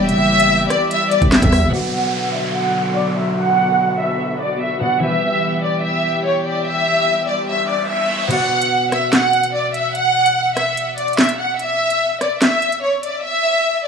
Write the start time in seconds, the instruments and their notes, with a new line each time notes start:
Already playing: 808-style bass E1, string section E3 G3 B3 G4
0.08 808-style bass F#1, violin section E5, closed hi-hat
0.40 closed hi-hat
0.70 violin section D5, cross-stick, closed hi-hat
0.91 violin section E5, closed hi-hat
1.11 violin section D5, closed hi-hat
1.22 808-style bass E1, kick, closed hi-hat
1.32 violin section E5, snare, clap, closed hi-hat
1.42 808-style bass E2, kick, closed hi-hat
1.52 cross-stick, open hi-hat
1.63 808-style bass F#1
1.70 harp B2 B3 F#4, string section D3 F#3 B3 F#4, violin section F#5, downlifter
1.75 harp D5
2.35 violin section E5
2.56 violin section F#5
2.96 violin section D5
3.17 violin section E5
3.38 violin section F#5
3.99 violin section E5
4.41 violin section D5
4.61 violin section E5
4.80 harp B2 B3 F#4 D5, violin section F#5
5.00 harp E3 E4 G4, string section E3 G3 G4, violin section E5
5.04 harp B4
5.64 violin section D5
5.84 violin section E5
6.25 violin section C#5
6.46 violin section D5
6.66 violin section E5, riser
7.28 violin section D5
7.49 violin section E5
7.69 violin section D5
7.90 violin section E5
8.28 harp B2 B3 F#4, violin section F#5, closed hi-hat, crash
8.33 harp D5
8.62 closed hi-hat
8.92 violin section E5, cross-stick, closed hi-hat
9.13 violin section F#5, snare, clap, closed hi-hat
9.33 closed hi-hat
9.43 closed hi-hat
9.54 violin section D5
9.74 violin section E5, closed hi-hat
9.95 violin section F#5, closed hi-hat
10.26 closed hi-hat
10.56 violin section E5, cross-stick, closed hi-hat
10.77 closed hi-hat
10.98 violin section D5, closed hi-hat
11.08 closed hi-hat
11.13 closed hi-hat
11.18 violin section E5, snare, clap, closed hi-hat
11.23 closed hi-hat
11.29 closed hi-hat
11.39 violin section F#5
11.59 violin section E5, closed hi-hat
11.90 closed hi-hat
12.21 violin section D5, cross-stick, closed hi-hat
12.42 violin section E5, snare, clap, closed hi-hat
12.62 closed hi-hat
12.72 closed hi-hat
12.83 violin section C#5
13.03 violin section D5, closed hi-hat
13.24 violin section E5